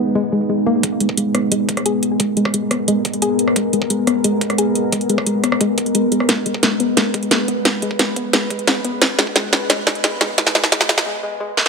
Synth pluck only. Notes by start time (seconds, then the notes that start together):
0.00 B3
0.15 G#3
0.32 G#3
0.49 G#3
0.66 A#3
0.83 G#3
1.00 G#3
1.17 G#3
1.34 B3
1.52 G#3
1.86 G#4
2.20 G#3
2.37 G#3
2.54 G#3
2.71 B3
2.88 G#3
3.22 G#4
3.56 G#3
3.73 G#3
3.90 G#3
4.07 B3
4.24 G#3
4.58 G#4
4.92 G#3
5.09 G#3
5.27 G#3
5.44 B3
5.61 G#3
5.95 G#3
6.12 G#3
6.29 G#3
6.46 G#3
6.63 G#3
6.80 B3
6.97 G#3
7.14 G#3
7.31 G#3
7.48 B3
7.65 G#3
7.82 G#3
7.99 G#3
8.16 B3
8.33 G#3
8.51 G#3
8.68 G#3
8.85 B3
9.02 G#3
9.19 G#3
9.36 G#3
9.53 G#3
9.70 G#3
9.87 G#3
10.04 G#3
10.21 G#3
10.38 G#3
10.55 G#3
10.72 G#3
10.89 G#3
11.06 G#3
11.23 G#3
11.40 G#3
11.57 G#3